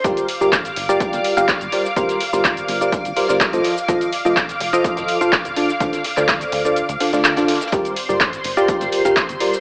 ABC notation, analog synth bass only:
X:1
M:4/4
L:1/16
Q:1/4=125
K:Gm
V:1 name="Analog synth bass" clef=bass
G,,, z2 G,,,2 z G,,,2 z G,,, z G,,, z G,,, z2 | G,,, z2 G,,,2 z G,,,2 z G,,, z G,,, z G,,, z2 | F,,, z2 F,,,2 z F,,,2 z F,,, z F,,, z F,,, z2 | D,, z2 D,,2 z D,,2 z D,, z D,,2 A,,, z2 |
G,,, z2 G,,,2 z G,,,2 z G,,, z G,,, z G,,, z2 |]